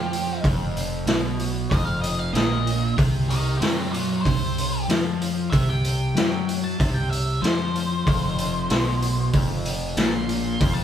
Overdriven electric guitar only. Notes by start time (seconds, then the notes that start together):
Already playing: F3
0.43 F2
1.07 B2
1.71 F2
2.34 A#2
2.97 C3
3.62 F#3
4.26 C3
4.89 F3
5.54 C3
6.16 F#3
6.79 C3
7.43 F3
8.06 F2
8.70 B2
9.34 F2
9.98 A#2
10.60 F2